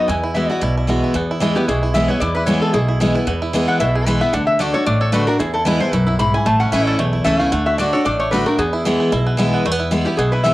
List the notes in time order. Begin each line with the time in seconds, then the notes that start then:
Already playing: B3
0.08 E2 E4 G#5
0.23 E4
0.34 E3 G#3 B3 F#4 E5
0.49 B3 E4 F#4 D5
0.61 B1 B2 E4
0.77 E4
0.87 E3 G#3 B3 E4 F#4
1.04 E4
1.14 E2 B3
1.31 E4
1.40 E3 G#3 B3 E4
1.55 B3 E4 G4
1.68 B1 B2 E4 G#4
1.83 E4
1.94 E3 G#3 B3 E4 E5
2.08 B3 E4 C#5
2.20 E2 E4 D5
2.35 E4 B4
2.46 E3 G#3 B3 E4 C#5
2.61 E4 A4
2.73 B1 B2 E4 G#4
2.88 E4
3.00 E3 G#3 B3 E4
3.15 B3 E4
3.27 E2 B3
3.42 E4
3.53 E3 G#3 B3 E4
3.68 B3 F#5
3.80 B1 B2 E4 E5
3.95 E4 G#4
4.06 E3 G#3 B3 E4 B4
4.21 B3 E4 E5
4.33 D2 D3 D4 F#5
4.47 E5
4.59 D3 A3 D4 F#4 D5
4.74 D4 F#4 A4 C#5
4.86 A1 A2 D4 D5
5.01 A4 C#5
5.12 D3 A3 D4 F#4 B4
5.27 D4 F#4 A#4
5.39 E2 E4 G#4
5.54 E4 A4
5.65 E3 G#3 B3 E4 B4
5.80 B3 E4 C5
5.92 B1 F#2 E4 B4
6.07 E4
6.19 G#2 E4 B5
6.34 E4 G#5
6.45 A1 A2 A3 A5
6.60 C#4 F#5
6.72 A1 E3 A3 C#4 E4 E5
6.86 A4 D5
6.98 B1 E2 A3 C#5
7.13 E4 D5
7.24 C#2 E3 A3 C#4 E4 A4 E5
7.39 A3 C#4 E4 F5
7.52 D2 D3 A3 F#5
7.66 F#4 E5
7.78 D3 A3 D4 F#4 D5
7.93 D4 F#4 A4 C#5
8.05 A1 A2 D4 D5
8.20 A3 C#5
8.31 D3 A3 D4 F#4 B4
8.46 A3 D4 F#4 A#4
8.58 E2 B3 G#4
8.73 E4
8.85 E3 G#3 B3 E4
9.00 E4
9.12 B1 B2 E4
9.27 B3
9.37 E3 G#3 B3 E4
9.54 B3
9.65 E2 A3
9.71 B3
9.80 E4
9.91 E3 G#3 B3 E4
10.05 B3 E4 G4
10.17 B1 B2 B3 G#4
10.32 E4 B4
10.44 E3 G#3 B3 E4 E5